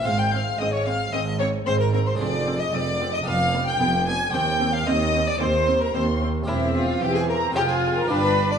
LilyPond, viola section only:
\new Staff \with { instrumentName = "Viola section" } { \time 4/4 \key f \minor \tempo 4 = 112 c'8 c'8 c'8 c'8 c'8 c'8 c'8 c'8 | \key c \minor c'8 c'8 c'8 c'8 b8 b8 b8 b8 | c'8 c'8 c'8 c'8 c'8 c'8 c'8 c'8 | c'4 c'4 f'4 d'4 | }